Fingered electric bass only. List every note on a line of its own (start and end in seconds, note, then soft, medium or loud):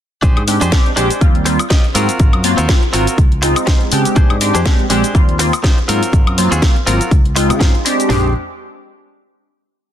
0.23 0.35 A#1 loud
0.37 0.57 G#2 loud
0.61 0.71 F2 medium
0.97 1.09 A#1 medium
1.21 1.56 D#2 medium
1.95 2.07 G#2 medium
2.20 2.31 G#1 loud
2.34 2.54 F#2 loud
2.58 2.67 D#2 medium
2.94 3.05 G#1 medium
3.18 3.53 C#2 medium
3.92 4.04 C#3 medium
4.16 4.28 A#1 loud
4.30 4.50 G#2 loud
4.55 4.64 F2 medium
4.90 5.02 A#1 medium
5.15 5.50 D#2 medium
5.89 6.00 G#2 medium
6.13 6.25 G#1 loud
6.27 6.47 F#2 loud
6.52 6.61 D#2 medium
6.87 6.99 G#1 medium
7.11 7.51 C#2 medium
7.50 7.59 C#3 loud
7.61 7.72 G#2 loud
8.10 8.33 A#1 loud